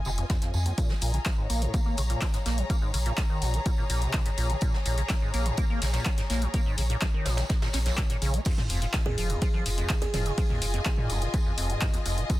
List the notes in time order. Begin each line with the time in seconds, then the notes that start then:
Already playing: F4 D#5 G#5
0.05 F1 C3, tambourine
0.18 F2, closed hi-hat
0.30 F2, kick, snare, closed hi-hat, tambourine
0.42 F2, snare, closed hi-hat
0.54 F2, tambourine
0.66 D#2, closed hi-hat
0.78 A#2 G#4, kick, closed hi-hat, tambourine
0.90 A#3, snare
1.01 A#1 A#2 A#5, open hi-hat, tambourine
1.14 C#3, closed hi-hat
1.26 F3, kick, snare, clap, closed hi-hat, tambourine
1.38 G#2 C#5
1.50 A#1 A#3, open hi-hat, tambourine
1.62 G#2, closed hi-hat
1.74 A#3, kick, closed hi-hat, tambourine
1.85 A#3, closed hi-hat
1.97 A#1 C#3, open hi-hat, tambourine
2.10 A#2, closed hi-hat
2.21 F3, kick, snare, clap, closed hi-hat, tambourine
2.33 G#2, snare, closed hi-hat
2.46 A#1 A#3, snare, open hi-hat, tambourine
2.58 F3, closed hi-hat
2.70 A#3, kick, closed hi-hat, tambourine
2.82 G#2
2.94 A#1 C#3, open hi-hat, tambourine
3.06 A#2, closed hi-hat
3.17 F3, kick, snare, clap, closed hi-hat, tambourine
3.30 D#3
3.42 A#1 A#2, open hi-hat, tambourine
3.54 F3, closed hi-hat
3.66 A#2, kick, closed hi-hat, tambourine
3.78 A#2
3.90 A#1 A#2, open hi-hat, tambourine
4.02 C3, closed hi-hat
4.13 C3, kick, snare, clap, closed hi-hat, tambourine
4.25 G#2, snare, closed hi-hat
4.38 A#1 A#2, open hi-hat, tambourine
4.50 F3, closed hi-hat
4.61 A#2, kick, closed hi-hat, tambourine
4.74 A#3, snare
4.85 A#1 A#2, open hi-hat, tambourine
4.98 C#3, closed hi-hat
5.09 F3, kick, snare, clap, closed hi-hat, tambourine
5.22 G#2
5.34 A#1 A#3, open hi-hat, tambourine
5.46 G#2, closed hi-hat
5.57 A#3, kick, closed hi-hat, tambourine
5.70 A#3, closed hi-hat
5.82 A#1 C#3, snare, open hi-hat, tambourine
5.93 A#2, snare, closed hi-hat, tambourine
6.05 F3, kick, snare, clap, closed hi-hat
6.18 G#2, snare, closed hi-hat
6.30 A#1 A#3, snare, open hi-hat, tambourine
6.42 F3, closed hi-hat
6.54 A#3, kick, closed hi-hat, tambourine
6.66 G#2
6.78 A#1 C#3, open hi-hat, tambourine
6.90 A#2, closed hi-hat
7.01 F3, kick, snare, clap, closed hi-hat, tambourine
7.14 D#3
7.25 A#1 A#2, snare, open hi-hat, tambourine
7.37 F3, snare, closed hi-hat, tambourine
7.49 A#2, kick, snare, closed hi-hat, tambourine
7.62 A#2, snare, tambourine
7.73 A#1 C#4, snare, open hi-hat, tambourine
7.86 A#1, snare, closed hi-hat, tambourine
7.97 A#2, kick, snare, clap, closed hi-hat
8.09 A#2, snare, closed hi-hat
8.22 A#1 C#3, open hi-hat, tambourine
8.34 A#3, closed hi-hat
8.45 F2 F4, kick, closed hi-hat, tambourine, crash
8.58 F2, snare, mid tom
8.69 F1 F2, open hi-hat, tambourine
8.82 G#2, closed hi-hat
8.94 C3, kick, snare, clap, closed hi-hat, tambourine
9.06 D#2 G#4 D#5, mid tom
9.18 F1 F3, open hi-hat, tambourine
9.30 D#2, closed hi-hat
9.42 F3, kick, closed hi-hat, tambourine
9.54 F3, closed hi-hat
9.61 G#5
9.66 F1 G#2, open hi-hat, tambourine
9.78 F2, closed hi-hat
9.89 C3, kick, snare, clap, closed hi-hat, tambourine
10.01 D#2 G#4, snare, closed hi-hat
10.14 F1 F3 G#4, snare, mid tom, open hi-hat, tambourine
10.26 C3, closed hi-hat
10.38 F3, kick, closed hi-hat, tambourine
10.50 D#2, mid tom
10.62 F1 G#2, open hi-hat, tambourine
10.74 F2, closed hi-hat
10.85 C3, kick, snare, clap, closed hi-hat, tambourine
10.98 A#2, mid tom
11.09 F1 F2, open hi-hat, tambourine
11.22 C3, closed hi-hat
11.34 F2, kick, closed hi-hat, tambourine
11.46 F2
11.58 F1 F2, open hi-hat, tambourine
11.70 G#2, closed hi-hat
11.81 kick, snare, clap, closed hi-hat, tambourine
11.94 D#2, snare, closed hi-hat
12.06 F1 F2, open hi-hat, tambourine
12.18 C3, closed hi-hat
12.30 F2, kick, closed hi-hat, tambourine